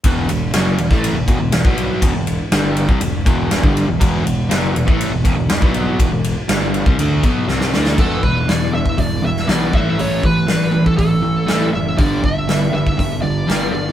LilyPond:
<<
  \new Staff \with { instrumentName = "Lead electric guitar" } { \time 4/4 \key e \minor \tempo 4 = 120 r1 | r1 | r1 | r1 |
\key e \dorian a'8 b'8 d''8 e''8 d''8 e''8 d''8 e''8 | cis''8 b'4~ b'16 a'16 a'4. e''8 | d''8 e''4 e''4 d''4 d''8 | }
  \new Staff \with { instrumentName = "Steel-string acoustic guitar" } { \time 4/4 \key e \minor r1 | r1 | r1 | r1 |
\key e \dorian <e, b, e g b e'>8 <e g b e'>8 <e, b, e g b e'>8 <e g b e'>8. <e g b e'>16 <e g b e'>8 <e, b, e g b e'>8 <e a e'>16 <a cis' e'>16 | <a, e a cis' e'>8 <e a e'>8 <a, e a cis' e'>8 <e a cis' e'>8. <a cis' e'>16 <e a cis' e'>8 <a, e a cis' e'>8 <e a cis' e'>16 <a cis' e'>16 | <g, d g b d' g'>8 <g b d' g'>8 <g, d g b d' g'>8 <g b d' g'>8. <g b d' g'>16 <g b d' g'>8 <g, d g b d' g'>8 <g b d' g'>16 <g b d' g'>16 | }
  \new Staff \with { instrumentName = "Overdriven electric guitar" } { \clef bass \time 4/4 \key e \minor <e, b, e>8 <e, b,>8 <fis, cis fis>8 <e, b,>16 <a, e a>8 <e, b,>16 <e, b,>16 <e, b,>16 <e, b,>16 <b, fis b>8. | <e, b,>16 <e, b,>8 r16 <g, d g>8. <c g>16 <e, b,>8 <e, b, e>8. <g, d g>8 <e, b,>16 | <e, b, e>8 <e, b,>8 <fis, cis fis>8 <e, b,>16 <a, e a>8 <e, b,>16 <e, b,>16 <e, b,>16 <e, b,>16 <b, fis b>8. | <e, b,>16 <e, b,>8 r16 <g, d g>8. <c g>16 <d a d'>8 <b, fis b>8 <c g c'>8 <d a d'>8 |
\key e \dorian <e, b, e>8 <e, b,>8 <e, b,>8 <e, b,>8 <e, b,>8 <e, b,>8 <e, b, e>8 <a, e a>8 | <a, e a>8 <a, e>8 <a, e>8 <a, e>8 <a, e>8 <a, e>8 <a, e a>8 <a, e>8 | <g, d g>8 <g, d>8 <g, d>8 <g, d>8 <g, d>8 <g, d>8 <g, d g>8 <g, d>8 | }
  \new Staff \with { instrumentName = "Picked electric bass" } { \clef bass \time 4/4 \key e \minor e,,8 e,,8 fis,,8 e,,16 a,,8 e,,16 e,,16 e,,16 e,,16 b,,8. | e,,16 e,,8 r16 g,,8. c,16 e,,8 e,,8. g,,8 e,,16 | e,,8 e,,8 fis,,8 e,,16 a,,8 e,,16 e,,16 e,,16 e,,16 b,,8. | e,,16 e,,8 r16 g,,8. c,16 d,8 b,,8 c,8 d,8 |
\key e \dorian e,,8 e,,8 e,,8 e,,8 e,,8 e,,8 b,,8 a,,8 | a,,8 a,,8 a,,8 a,,8 a,,8 a,,8 a,,8 fis,,8 | g,,8 g,,8 g,,8 g,,8 g,,8 g,,8 g,,8 g,,8 | }
  \new DrumStaff \with { instrumentName = "Drums" } \drummode { \time 4/4 <bd cymr>8 cymr8 <cymr sn>8 cymr16 <bd sn>16 cymr8 <bd cymr>8 <cymr sn>16 bd16 cymr8 | <bd cymr>8 cymr8 <cymr sn>8 cymr16 bd16 cymr8 <bd cymr>8 <cymr sn>16 bd16 cymr8 | <bd cymr>8 cymr8 <cymr sn>8 cymr16 bd16 cymr8 <bd cymr>8 <cymr sn>16 bd16 cymr8 | <bd cymr>8 cymr8 <cymr sn>8 cymr16 bd16 cymr8 <bd cymr>8 sn16 sn16 sn16 sn16 |
<cymc bd>8 bd8 <hho sn>8. bd16 <hho bd>8. sn16 <hho sn>8 bd8 | hho8 bd8 <hho sn>16 sn8 bd16 <hho bd>4 <hho sn>4 | <hho bd>8 bd8 <hho sn>8. bd16 <hho bd>4 <hho sn>4 | }
>>